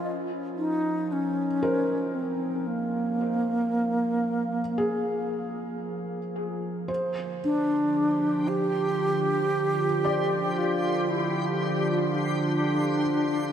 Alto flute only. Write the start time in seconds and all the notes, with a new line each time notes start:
Already playing: F4
0.58 D#4
1.12 C#4
2.15 C4
2.67 A#3
7.44 D4
8.48 G4
10.58 F4
11.10 E4
11.90 F4
12.15 D4